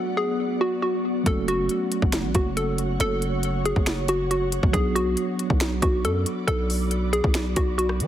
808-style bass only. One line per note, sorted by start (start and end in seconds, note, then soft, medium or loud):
1.26 1.68 F#1 loud
2.02 2.25 F#1 loud
2.24 2.34 A1 loud
2.35 2.97 F#1 loud
3.00 3.73 F#1 loud
3.76 4.60 F#1 loud
4.63 4.74 F#1 loud
4.74 5.16 B1 loud
5.50 5.81 B1 loud
5.83 6.06 B1 loud
6.04 6.25 F#2 loud
6.48 7.21 B1 loud
7.24 7.55 B1 loud
7.57 8.02 B1 loud
8.00 8.07 F#3 medium